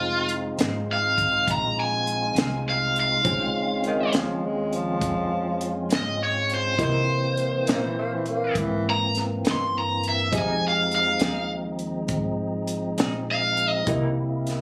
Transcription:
Already playing: F1 G#3 C4 D#4 F4 G#4 C5
0.29 closed hi-hat
0.58 G#1 F2 D#3 G#3 C4, snare, closed hi-hat
0.93 F5
1.18 kick, closed hi-hat
1.48 A#1 A#5, kick, closed hi-hat
1.80 G#5
2.07 closed hi-hat
2.35 C2 F2 D#3 G#3 C4, snare, closed hi-hat
2.69 F5
2.96 closed hi-hat
3.00 F5
3.24 C#2 C#3 F3 G#3 C4 C#4 D#4 F4 G#4 C5, kick, closed hi-hat
3.84 D#3, closed hi-hat
4.13 D#2 C#3 F3 G#3 C4, snare, closed hi-hat
4.46 G#3
4.73 F3, closed hi-hat
5.01 F2, kick, closed hi-hat
5.61 closed hi-hat
5.89 G#2 C#3 F3 G#3 C4, snare, closed hi-hat
5.95 D#5
6.24 C#5
6.49 closed hi-hat
6.54 C5
6.78 C3 E3 A#3 C4 D#4 E4 G4 A#4 D#5, kick, closed hi-hat
6.83 C5
7.37 closed hi-hat
7.67 A#2 C3 E3 A#3 D#4, snare, closed hi-hat
7.84 E3
7.98 A#3
8.14 E3
8.26 A#3, closed hi-hat
8.55 G#2 E3, kick, closed hi-hat
8.90 A#5
9.15 snare, closed hi-hat
9.44 G2 C3 E3 A#3 D#4, snare, closed hi-hat
9.51 C6
9.78 A#5
10.03 closed hi-hat
10.09 E5
10.32 F2 F3 G#3 C4 D#4 G4 G#4 C5 D#5, kick, closed hi-hat
10.38 G#5
10.68 F5
10.91 F5, closed hi-hat
11.19 D#2 F3 C4 D#4 G#4, snare, closed hi-hat
11.79 closed hi-hat
12.08 G#1, kick, closed hi-hat
12.67 closed hi-hat
12.98 A#1 F3 C4 D#4 G#4, snare, closed hi-hat
13.31 F5
13.57 closed hi-hat
13.69 D#5
13.87 C2 C3 E3 A#3 C4 D#4 E4 G4 A#4 D#5, kick, closed hi-hat
14.47 snare, closed hi-hat

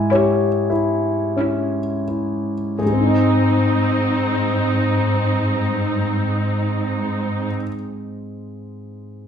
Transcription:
Already playing: G#2 E4 G#5
0.11 C#4 E4 G4 C#5
0.70 E4
1.36 C#4 E4
2.08 E4
2.79 G#2 C4 D#4 G#4
2.86 G#3
2.93 C4
3.00 D#4
3.06 D#5

